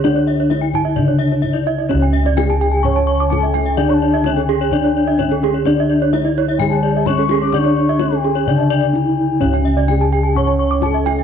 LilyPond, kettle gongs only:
<<
  \new Staff \with { instrumentName = "Kettle gongs" } { \time 4/4 \tempo 4 = 128 << { d'2. r4 | cis'2. r4 | d'2. r4 | d'2. r4 |
d'2. r4 | cis'2. r4 | } \\ { r4 d'8 r4. d'8 r8 | r4 d'8 r4. d'8 r8 | r4 d'8 r4. d'8 r8 | r4 d'8 r4. d'8 r8 |
r4 d'8 r4. d'8 r8 | r4 d'8 r4. d'8 r8 | } >> }
  \new Staff \with { instrumentName = "Kettle gongs" } { \clef bass \time 4/4 << { d4 r4 cis2~ | cis4 r2. | r2 d2~ | d4 r4 d2~ |
d4 r4 cis2~ | cis4 r2. | } \\ { r1 | cis,1~ | cis,2 r2 | r1 |
r1 | cis,1 | } >> }
>>